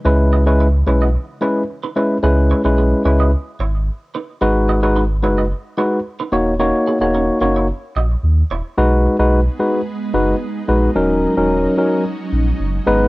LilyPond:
<<
  \new Staff \with { instrumentName = "Clean electric guitar" } { \time 4/4 \key cis \dorian \tempo 4 = 110 <e' b'>16 r16 <fis' dis''>16 <e' cis''>16 <e' b'>16 r16 <e' cis''>16 <fis' dis''>16 r8 <e' cis''>16 r8 <dis' b'>16 <e' cis''>16 r16 | <b gis'>16 r16 <e' cis''>16 <dis' b'>16 <b gis'>16 r16 <e' cis''>16 <fis' dis''>16 r8 <e' cis''>16 r8. <dis' b'>16 r16 | <dis' b'>16 r16 <fis' dis''>16 <e' cis''>16 <dis' b'>16 r16 <e' cis''>16 <fis' dis''>16 r8 <e' cis''>16 r8 <dis' b'>16 <fis' cis''>16 r16 | <cis' ais'>16 r16 <b gis'>16 <b gis'>16 <cis' ais'>16 r16 <cis' ais'>16 <e' cis''>16 r8 <fis' dis''>16 r8. <e' cis''>16 r16 |
r1 | r1 | }
  \new Staff \with { instrumentName = "Tine electric piano" } { \time 4/4 \key cis \dorian <gis cis' e' b'>8. <gis cis' e' b'>16 r8 <gis cis' e' b'>8 r8 <gis cis' e' b'>8 r8 <gis cis' e' b'>8 | <gis cis' e' b'>8. <gis cis' e' b'>8. <gis cis' e' b'>8 r2 | <gis dis' fis' b'>8. <gis dis' fis' b'>16 r8 <gis dis' fis' b'>8 r8 <gis dis' fis' b'>8 r8 <ais dis' fis' cis''>8 | <ais dis' fis' cis''>8. <ais dis' fis' cis''>8. <ais dis' fis' cis''>8 r2 |
<gis dis' fis' b'>8. <gis dis' fis' b'>16 r8 <gis dis' fis' b'>8 r8 <gis dis' fis' b'>8 r8 <gis dis' fis' b'>8 | <fis cis' dis' ais'>8. <fis cis' dis' ais'>8. <fis cis' dis' ais'>8 r4. <gis b dis' b'>8 | }
  \new Staff \with { instrumentName = "Ambient pad" } { \time 4/4 \key cis \dorian << { r1 | r1 | r1 | r1 |
dis'1~ | dis'1 | } \\ { r1 | r1 | r1 | r1 |
<gis b>1 | <fis cis'>2.~ <fis cis'>8 <gis b>8 | } >> }
  \new Staff \with { instrumentName = "Sub bass" } { \clef bass \time 4/4 \key cis \dorian cis,4. b,,8. r4. r16 | cis,8. b,,8. cis,8. r16 gis,,8. r8. | gis,,4. fis,,8. r4 r16 dis,,8~ | dis,,8 r16 dis,,8. fis,,8. r16 ais,,8 dis,8 dis,,16 r16 |
b,,8. b,,8. r4 fis,,8 r8 ais,,8 | dis,,8. dis,,8. r4 ais,,8 fis,,8 gis,,8 | }
>>